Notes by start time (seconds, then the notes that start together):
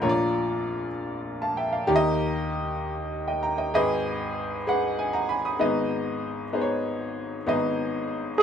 0.02 A#1 A#2 F4 A#4 C#5
0.09 D5
1.42 F5 A5
1.57 E5 G5
1.73 D5 F5
1.87 D#2 D#3 G4 A#4 D5
1.96 D#5
3.28 D#5 G5
3.43 G5 A#5
3.58 D#5 G5
3.74 G#1 G#2 G#4 B4 D#5
4.67 G#4 B4 F#5
4.99 G#5
5.13 F#5 A#5
5.29 G#5 B5
5.45 B5 D#6
5.59 G#1 G#2 B3 D#4 G#4 D#5
6.53 B3 D#4 G#4 C5
6.61 C#5
7.46 G#1 G#2 B3 D#4 G#4 D#5
8.39 B3 D#4